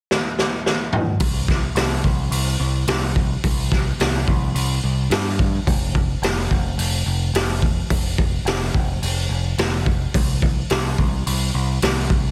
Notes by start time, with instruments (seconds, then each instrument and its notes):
0.11 snare
0.39 snare
0.66 snare
0.93 mid tom
1.20 picked electric bass C2, kick, open hi-hat
1.48 kick, snare
1.75 picked electric bass C2, snare, open hi-hat
2.04 picked electric bass C2, kick
2.31 picked electric bass C2, open hi-hat
2.60 picked electric bass C2
2.88 picked electric bass C2, snare, open hi-hat
3.16 kick
3.44 picked electric bass C2, kick, open hi-hat
3.72 kick, snare
4.00 picked electric bass C2, snare, open hi-hat
4.28 picked electric bass C2, kick
4.54 picked electric bass C2, open hi-hat
4.84 picked electric bass C2
5.10 picked electric bass G2, snare, open hi-hat
5.39 kick
5.67 picked electric bass F1, kick, open hi-hat
5.95 kick
6.22 picked electric bass F1, snare, open hi-hat
6.51 picked electric bass F1, kick
6.78 picked electric bass F1, open hi-hat
7.06 picked electric bass F1
7.34 picked electric bass F1, snare, open hi-hat
7.62 kick
7.90 picked electric bass F1, kick, open hi-hat
8.18 kick
8.45 picked electric bass F1, snare, open hi-hat
8.74 picked electric bass F1, kick
9.02 picked electric bass F1, open hi-hat
9.29 picked electric bass F1
9.58 picked electric bass F1, snare, open hi-hat
9.86 kick
10.14 picked electric bass C2, kick, open hi-hat
10.42 kick
10.70 picked electric bass C2, snare, open hi-hat
10.98 picked electric bass C2, kick
11.26 picked electric bass C2, open hi-hat
11.54 picked electric bass C2
11.82 picked electric bass C2, snare, open hi-hat
12.10 kick